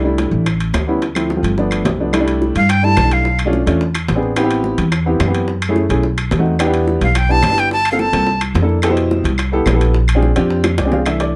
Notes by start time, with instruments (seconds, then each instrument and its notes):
Already playing: upright bass C2
0.03 upright piano G3 A3 D4 E4
0.18 high bongo, high timbale, low timbale
0.31 upright bass A1
0.46 high bongo, high timbale, claves
0.60 high timbale
0.73 upright bass D2, high bongo, low bongo, high timbale, low timbale, claves
0.87 upright piano G3 B3 C#4 E4
1.02 high bongo, high timbale
1.15 upright piano F3 A3 C4 E4, high bongo, high timbale, claves
1.30 high bongo, low timbale
1.36 upright piano F3 A3 C4 F4
1.43 upright bass G1, high bongo, high timbale
1.57 upright piano F3 A3 B3 D4, high bongo
1.71 high bongo, high timbale, claves
1.85 upright bass C2, high bongo, low bongo, high timbale, low timbale
1.99 upright piano F3 A3 B3 D4
2.12 upright piano G3 A3 D4 E4, high bongo, high timbale, claves
2.20 upright piano G3 A3 D4 E4
2.28 high timbale
2.42 high bongo
2.55 upright bass G2, flute F5, high timbale
2.69 flute G5, high bongo, high timbale, claves
2.82 upright piano G3 A3 D4 E4, flute A5
2.97 upright bass B1, high bongo, low bongo, high timbale, claves
3.03 upright piano G3 A3 D4 E4
3.11 flute F5, high timbale
3.25 high bongo
3.39 high timbale, claves
3.45 upright piano A3 C#4 D4 F4
3.53 high bongo
3.66 upright bass E2, upright piano A3 C#4 D4 F4, high timbale
3.81 high bongo
3.95 high bongo, high timbale, claves
4.08 upright bass A1, high bongo, low bongo, high timbale
4.15 upright piano B3 C4 D4 G#4
4.23 high bongo
4.36 upright piano B3 C4 E4 G4, high bongo, high timbale, claves
4.43 upright piano B3 C4 E4 G4
4.51 high timbale
4.64 high bongo
4.78 upright bass E2, high timbale
4.92 high bongo, high timbale, claves
5.06 upright piano B3 C4 E4 G4
5.20 upright bass F#2, high bongo, low bongo, high timbale, low timbale, claves
5.27 upright piano B3 C4 E4 G4
5.35 high timbale
5.48 high bongo
5.62 high timbale, claves
5.69 upright piano A3 C#4 E4 G#4
5.76 high bongo
5.89 upright bass B1, upright piano A3 C#4 E4 G#4, high bongo, high timbale
6.03 high bongo
6.18 high bongo, high timbale, claves
6.31 upright bass E2, high bongo, low bongo, high timbale
6.38 upright piano A3 C4 D#4 F#4
6.46 high bongo
6.59 upright piano B3 D4 E4 G4, high bongo, high timbale, claves
6.66 upright piano B3 D4 E4 G4
6.74 high timbale
6.87 high bongo
7.01 upright bass B1, flute F5, high timbale
7.15 flute G5, high bongo, high timbale, claves
7.29 upright piano B3 D4 E4 G4, flute A5
7.43 upright bass G1, high bongo, low bongo, high timbale, low timbale, claves
7.50 upright piano B3 D4 E4 G4
7.58 flute G5, high timbale
7.71 flute A5, high bongo
7.85 high timbale, claves
7.92 upright piano A#3 C4 F4 A4, flute F5
7.99 flute A5, high bongo
8.12 upright bass C2, upright piano A#3 C4 F4 A4, high bongo, high timbale
8.27 high bongo
8.41 high bongo, high timbale, claves
8.54 upright bass F2, high bongo, low bongo, high timbale
8.62 upright piano A#3 D4 E4 A4
8.69 high bongo
8.82 upright piano B3 E4 G4 A4, high bongo, high timbale, claves
8.89 upright piano B2 E4 G4 C5
8.97 high timbale
9.11 high bongo
9.24 upright bass C2, high timbale
9.38 high bongo, high timbale, claves
9.52 upright piano B3 E4 G4 A4
9.66 upright bass A#1, high bongo, low bongo, high timbale, low timbale, claves
9.73 upright piano B3 E4 G4 A4
9.81 high timbale
9.94 high bongo
10.08 high timbale, claves
10.15 upright piano C4 D4 F4 G#4
10.22 high bongo
10.36 upright bass F2, upright piano C4 D4 F4 G4, high timbale
10.50 high bongo
10.64 high bongo, high timbale, claves
10.78 upright bass C2, upright piano D5, high bongo, high timbale
10.85 upright piano C4 D4 F4 G#4
10.92 upright piano F5, low bongo
11.06 upright piano E3 A3 D4 E5, high timbale, claves
11.20 upright piano D5, high timbale